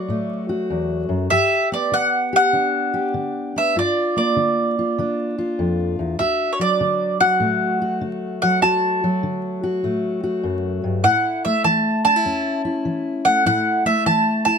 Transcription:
Already playing: steel-string acoustic guitar F#3 F#4, mandolin D5
0.08 steel-string acoustic guitar A2 A3
0.49 steel-string acoustic guitar F#4
0.70 steel-string acoustic guitar E2
1.09 steel-string acoustic guitar F#2
1.30 steel-string acoustic guitar G2 G4, mandolin E5
1.72 steel-string acoustic guitar B3, mandolin D5
1.92 steel-string acoustic guitar D3, mandolin F#5
2.33 steel-string acoustic guitar G4, mandolin F#5
2.53 steel-string acoustic guitar D3 D4
2.94 steel-string acoustic guitar G4
3.14 steel-string acoustic guitar D3
3.56 steel-string acoustic guitar B3, mandolin E5
3.76 steel-string acoustic guitar G2 F4, mandolin D5
4.16 steel-string acoustic guitar A#3, mandolin D5
4.36 steel-string acoustic guitar D3
4.79 steel-string acoustic guitar F4
4.98 steel-string acoustic guitar D3 D4
5.38 steel-string acoustic guitar F4
5.59 steel-string acoustic guitar F2
5.99 steel-string acoustic guitar E2
6.19 steel-string acoustic guitar D2 F#4, mandolin E5
6.53 mandolin C#5
6.59 steel-string acoustic guitar F#3, mandolin D5
6.81 steel-string acoustic guitar D3
7.20 steel-string acoustic guitar F#4, mandolin F#5
7.40 steel-string acoustic guitar A2 A3
7.82 steel-string acoustic guitar F#4
8.01 steel-string acoustic guitar D3
8.42 steel-string acoustic guitar F#3, mandolin F#5
8.61 steel-string acoustic guitar D2 F#4, mandolin A5
9.04 steel-string acoustic guitar F#3
9.23 steel-string acoustic guitar D3
9.64 steel-string acoustic guitar F#4
9.83 steel-string acoustic guitar A2 A3
10.24 steel-string acoustic guitar F#4
10.43 steel-string acoustic guitar F#2
10.84 steel-string acoustic guitar G2
11.03 steel-string acoustic guitar A2 E4, mandolin F#5
11.45 steel-string acoustic guitar A3, mandolin E5
11.64 steel-string acoustic guitar E3, mandolin A5
12.05 steel-string acoustic guitar D4, mandolin A5
12.16 steel-string acoustic guitar E4
12.25 steel-string acoustic guitar E2 C#4
12.65 steel-string acoustic guitar E4
12.85 steel-string acoustic guitar E3
13.25 steel-string acoustic guitar A3, mandolin F#5
13.46 steel-string acoustic guitar A2 E4, mandolin F#5
13.86 steel-string acoustic guitar A3, mandolin E5
14.06 steel-string acoustic guitar E3, mandolin A5
14.45 steel-string acoustic guitar E4, mandolin A5

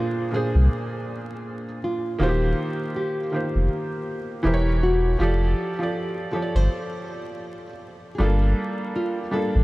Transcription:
Already playing: felt piano A#2 A#3 D4 G#4 C5, nylon-string guitar F4
0.31 felt piano A#2 A#3 D4 G#4, nylon-string guitar G#4
0.36 felt piano C5
0.55 sub bass C2
1.84 nylon-string guitar F4
2.19 sub bass D#1, felt piano D#3 A#3 F4 F#4, nylon-string guitar G4
2.23 felt piano C5
2.29 felt piano G4
2.96 nylon-string guitar G4
3.31 felt piano D#3 A#3 F4 G4
3.36 felt piano C5
3.55 sub bass F1
4.43 sub bass E1, felt piano E3 E4 G4 A#4
4.47 felt piano C5
4.54 felt piano C#5
4.83 nylon-string guitar F#4
5.19 sub bass F1, felt piano F3 F4 G4 A4, nylon-string guitar G4
5.23 felt piano D5
5.79 felt piano F3 F4 G4 A4
5.83 felt piano D5
6.31 felt piano F3 F4 G4 A4, nylon-string guitar A4
6.36 felt piano C#5
6.42 felt piano D5
6.55 sub bass G1, nylon-string guitar C5
8.15 felt piano G3, nylon-string guitar G#4
8.20 sub bass G1, felt piano A#3 D4 F4 A4, nylon-string guitar A4
8.96 nylon-string guitar F4
9.31 felt piano G3 D4 F4 A4, nylon-string guitar A4
9.36 felt piano A#3
9.55 sub bass A1

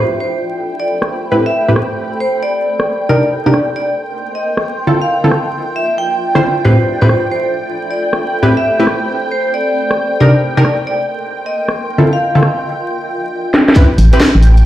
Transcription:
Already playing: ambient pad A4 C5 D5 E5 G5 B5, string machine G5
0.20 vibraphone C5
0.80 vibraphone D5
1.02 cross-stick
1.32 synth stab A2 C4 E4 G4 B4
1.46 vibraphone E5
1.68 synth stab A2 C4 E4 G4 B4
1.76 cross-stick
2.20 vibraphone C5
2.43 vibraphone D5
2.80 cross-stick
3.09 synth stab C3 D4 D#4 G4 A#4, ambient pad A#4, vibraphone D5
3.28 ambient pad C6
3.32 ambient pad D#5
3.46 synth stab C3 D4 D#4 G4 A#4, vibraphone D5
3.54 cross-stick
3.76 vibraphone D5
4.35 vibraphone D#5
4.57 cross-stick
4.87 synth stab D3 C4 E4 F4 A4, ambient pad F4
5.02 vibraphone F5
5.23 synth stab D3 C4 E4 F4 A4, ambient pad E5
5.28 ambient pad D5, cross-stick
5.76 vibraphone E5
5.98 vibraphone G5
6.35 synth stab D3 C4 E4 F4 C5, cross-stick
6.65 synth stab A2 C4 E4 G4 B4, ambient pad A4, vibraphone C5
6.84 ambient pad B5
7.02 synth stab A2 C4 E4 G4 B4, vibraphone C5, ambient pad C5
7.08 ambient pad G5, cross-stick
7.31 vibraphone C5
7.91 vibraphone D5
8.13 cross-stick
8.43 synth stab A2 C4 E4 G4 B4
8.57 vibraphone E5
8.79 synth stab A2 C4 E4 G4 B4
8.87 cross-stick
9.32 vibraphone C5
9.54 vibraphone D5
9.91 cross-stick
10.20 synth stab C3 D4 D#4 G4 A#4, ambient pad A#4, vibraphone D5
10.41 ambient pad D#5 C6
10.57 synth stab C3 D4 D#4 G4 A#4, vibraphone D5
10.65 cross-stick
10.87 vibraphone D5
11.46 vibraphone D#5
11.68 cross-stick
11.98 synth stab D3 C4 E4 F4 A4
12.13 vibraphone F5
12.35 synth stab D3 C4 E4 F4 A4
12.43 cross-stick
13.54 snare
13.68 snare
13.76 synth stab C4 E4 G4 B4, string machine G5, kick, closed hi-hat
13.98 fm bass A1, open hi-hat
14.13 synth stab C4 E4 G4 B4, closed hi-hat
14.20 cross-stick, snare
14.35 fm bass A1
14.43 open hi-hat
14.57 closed hi-hat

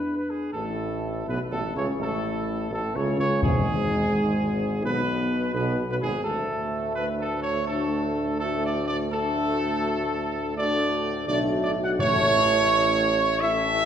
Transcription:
Already playing: tuba E2, trombone section E3 G#3, french horn section D4, trumpet section B4
0.16 trumpet section B4
0.29 trumpet section G#4
0.53 tuba A1, trombone section A2, french horn section A3, trumpet section A4
1.27 tuba B1, trombone section B2, french horn section B3, trumpet section B4
1.51 tuba A1, trombone section A2, french horn section A3, trumpet section A4
1.74 tuba C#2, trombone section C#3, french horn section C#4, trumpet section C#5
1.98 tuba A1, trombone section A2, french horn section A3, trumpet section A4
2.70 tuba A1, trombone section A2, french horn section A3, trumpet section A4
2.94 tuba C#2, trombone section C#3, french horn section C#4, trumpet section C#5
3.18 tuba C#2, trombone section C#3, french horn section C#4, trumpet section C#5
3.42 tuba G#1, timpani E2, trombone section G#2, french horn section G#3, trumpet section G#4
4.83 tuba B1, trombone section B2, french horn section B3, trumpet section B4
5.54 tuba B1, trombone section B2, french horn section B3, trumpet section B4
5.89 tuba B1, trombone section B2, french horn section B3, trumpet section B4
6.00 tuba G#1, trombone section G#2, french horn section G#3, trumpet section G#4
6.23 tuba D2, trombone section A2 A3, french horn section D4 F#4, trumpet section A4
6.95 trumpet section B4
7.20 trumpet section A4
7.42 trumpet section C#5
7.66 trombone section A2 A3, french horn section D4 F#4, trumpet section A4
8.38 trombone section A2 A3, french horn section D4 F#4, trumpet section A4
8.63 trumpet section D5
8.86 trumpet section D5
9.10 trombone section A2 A3, french horn section D4 F#4, trumpet section A4
10.56 trombone section A2 A3, french horn section D4 F#4, trumpet section D5
11.28 tuba B1, trombone section A2 A3, french horn section D4 F#4, trumpet section D5
11.62 trumpet section D5
11.83 trumpet section F#5
11.98 tuba A1, timpani A2, trombone section A2 A3, french horn section C#4 E4, trumpet section C#5
13.40 trombone section A2 A3, french horn section C#4 E4, trumpet section E5

